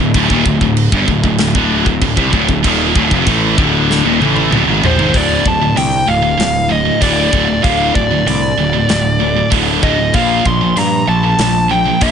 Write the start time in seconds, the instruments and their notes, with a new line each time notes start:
0.00 picked electric bass D1, distorted electric guitar D2 A2
0.14 picked electric bass D1, distorted electric guitar D2 A2, kick, crash
0.30 picked electric bass D#1, distorted electric guitar D#2 A#2, kick
0.46 picked electric bass D1, distorted electric guitar D2 A2, kick
0.61 picked electric bass D1, distorted electric guitar D2 A2, kick
0.77 crash
0.92 picked electric bass G1, distorted electric guitar G2 D3, kick
1.08 picked electric bass D1, distorted electric guitar D2 A2, kick
1.23 picked electric bass D1, distorted electric guitar D2 A2, kick
1.38 picked electric bass D1, distorted electric guitar D2 A2, snare, crash
1.55 picked electric bass D1, distorted electric guitar D2 A2 D3, kick
1.86 picked electric bass D1, distorted electric guitar D2 A2, kick
2.01 picked electric bass D1, distorted electric guitar D2 A2, kick, crash
2.17 picked electric bass C2, distorted electric guitar C3 G3, kick
2.33 picked electric bass D1, distorted electric guitar D2 A2, kick
2.49 picked electric bass D1, distorted electric guitar D2 A2, kick
2.64 picked electric bass D#1, distorted electric guitar D#2 A#2 D#3, kick, crash
2.95 picked electric bass D1, distorted electric guitar D2 A2, kick
3.11 picked electric bass F1, distorted electric guitar F2 C3, kick
3.26 picked electric bass A1, distorted electric guitar A2 E3 A3, kick, crash
3.56 picked electric bass D1, distorted electric guitar D2 A2 D3, kick
3.91 snare
4.04 picked electric bass D#1, distorted electric guitar D#2 A#2
4.20 picked electric bass A1, distorted electric guitar A2 E3 A3, high tom
4.36 high tom
4.50 picked electric bass D1, distorted electric guitar D2 A2, mid tom
4.66 picked electric bass G#1, distorted electric guitar G#2 D#3
4.81 picked electric bass A#1, distorted electric guitar A#2 F3, floor tom
4.86 lead electric guitar C5
4.97 picked electric bass G#1, distorted electric guitar G#2 D#3, floor tom
5.13 picked electric bass D1, distorted electric guitar D2 A2 D3, lead electric guitar D5, kick, open hi-hat
5.44 picked electric bass D1, distorted electric guitar D2 A2, lead electric guitar A5, kick
5.60 distorted electric guitar D2 A2
5.74 picked electric bass C2, distorted electric guitar D2 A2, lead electric guitar G5, open hi-hat
6.06 picked electric bass D1, distorted electric guitar D2 A2, lead electric guitar F5
6.22 distorted electric guitar D2 A2
6.38 picked electric bass D1, distorted electric guitar D2 A2, snare, open hi-hat
6.68 distorted electric guitar D2 A2, lead electric guitar D#5
6.85 distorted electric guitar D2 A2
7.00 picked electric bass D1, distorted electric guitar D2 A2 D3, lead electric guitar D5, kick, open hi-hat
7.32 picked electric bass D1, distorted electric guitar D2 A2 D3, kick
7.49 distorted electric guitar D2 A2
7.63 picked electric bass D1, distorted electric guitar D2 A2 D3, lead electric guitar F5, kick, open hi-hat
7.95 picked electric bass D1, distorted electric guitar D2 A2, lead electric guitar D5, kick
8.11 distorted electric guitar D2 A2
8.26 picked electric bass C2, distorted electric guitar D2 A2, lead electric guitar D5, open hi-hat
8.58 picked electric bass D1, distorted electric guitar D2 A2
8.75 distorted electric guitar D2 A2
8.89 picked electric bass D1, distorted electric guitar D2 A2, snare, open hi-hat
9.19 distorted electric guitar D2 A2
9.35 distorted electric guitar D2 A2
9.51 picked electric bass D1, distorted electric guitar D2 A2 D3, kick, open hi-hat
9.81 picked electric bass D1, distorted electric guitar D2 A2 D3, lead electric guitar D#5, kick
9.97 distorted electric guitar D2 A2
10.13 picked electric bass A#1, distorted electric guitar A#2 F3 A#3, lead electric guitar F5, kick, open hi-hat
10.45 picked electric bass A#1, distorted electric guitar A#2 F3, lead electric guitar C6, kick
10.60 distorted electric guitar A#2 F3
10.76 picked electric bass G2, distorted electric guitar A#2 F3, lead electric guitar A#5, open hi-hat
11.08 picked electric bass A#1, distorted electric guitar A#2 F3, lead electric guitar A5
11.24 distorted electric guitar A#2 F3
11.39 picked electric bass A#1, distorted electric guitar A#2 F3, snare, open hi-hat
11.70 distorted electric guitar A#2 F3, lead electric guitar G5
11.87 distorted electric guitar A#2 F3
12.01 picked electric bass A#1, distorted electric guitar A#2 F3 A#3, lead electric guitar F5, kick, open hi-hat